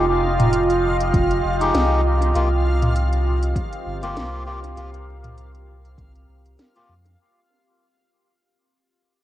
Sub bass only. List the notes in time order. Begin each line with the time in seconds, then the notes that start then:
Already playing: F1
1.14 F1
1.44 F1
1.74 C2
2.35 C2
3.86 G1
4.17 C2
4.77 C2
5.98 C2
6.29 C2
6.89 F2